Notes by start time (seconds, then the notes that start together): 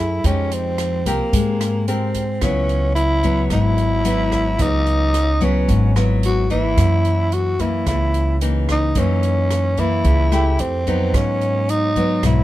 Already playing: F#2 A3 E4 G#4
0.24 F2 F3 G#3 C#4 D#4 G4, kick, closed hi-hat
0.52 C4, closed hi-hat
0.78 cross-stick, closed hi-hat
1.06 C2 A#3 C4 G4 A#4, kick, closed hi-hat
1.33 G#2 G#3, kick, closed hi-hat
1.61 cross-stick, closed hi-hat
1.88 C4 G4 A#4, closed hi-hat
2.14 kick, closed hi-hat
2.41 C#2 C#3 F#3 B3 C#4 E4, kick, cross-stick, closed hi-hat
2.69 closed hi-hat
2.95 E4, closed hi-hat
3.23 F#3 B3 E4, kick, closed hi-hat
3.50 G#1 G#2 E4, kick, cross-stick, closed hi-hat
3.78 closed hi-hat
4.04 F#3 B3 E4, closed hi-hat
4.32 kick, cross-stick, closed hi-hat
4.59 C#2 C#3 F#3 B3 D#4, kick, closed hi-hat
4.86 closed hi-hat
5.14 cross-stick, closed hi-hat
5.41 F#3 B3 C#4 E4, kick, closed hi-hat
5.68 G#1 G#2, kick, closed hi-hat
5.96 F#3 B3 E4, cross-stick, closed hi-hat
6.23 F#4, closed hi-hat
6.50 E3 A#3 E4, kick, closed hi-hat
6.77 F#2, kick, cross-stick, closed hi-hat
7.05 closed hi-hat
7.32 F#4, closed hi-hat
7.59 E3 A#3 E4, kick, closed hi-hat
7.86 C#2 C#3 E4, kick, cross-stick, closed hi-hat
8.14 closed hi-hat
8.41 E3 A#3 D#4, closed hi-hat
8.68 D#4, kick, cross-stick, closed hi-hat
8.95 F#2 E3 A#3 C#4 D#4, kick, closed hi-hat
9.23 closed hi-hat
9.51 cross-stick, closed hi-hat
9.77 E3 A#3 E4, kick, closed hi-hat
10.04 C#2 C#3, kick, closed hi-hat
10.32 A3 E4 G4, cross-stick, closed hi-hat
10.59 F2 C4, closed hi-hat
10.86 F#3 B3 D#4, kick, closed hi-hat
11.14 G#2 C#4, kick, cross-stick, closed hi-hat
11.41 closed hi-hat
11.69 D#4, closed hi-hat
11.96 F#3 B3, kick, closed hi-hat
12.23 B1 G#2 E4, kick, cross-stick, closed hi-hat